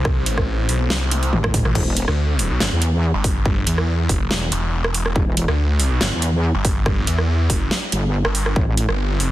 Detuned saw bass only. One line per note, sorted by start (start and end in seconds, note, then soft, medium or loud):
0.05 0.25 C2 medium
0.26 0.67 A1 loud
0.69 0.89 B1 loud
0.90 1.31 C2 loud
1.65 1.74 A1 loud
2.08 2.49 D2 loud
2.50 2.59 B1 loud
3.14 3.44 G1 loud
3.46 3.65 G1 medium
3.67 4.08 E2 loud
4.09 4.29 F#1 loud
4.52 5.14 E1 loud
5.48 5.89 D2 medium
5.91 5.99 B1 loud
6.55 6.84 G1 loud
6.86 7.06 G1 loud
7.07 7.48 E2 loud
7.50 7.69 F#1 loud
8.25 8.54 G1 loud
8.89 9.29 G1 loud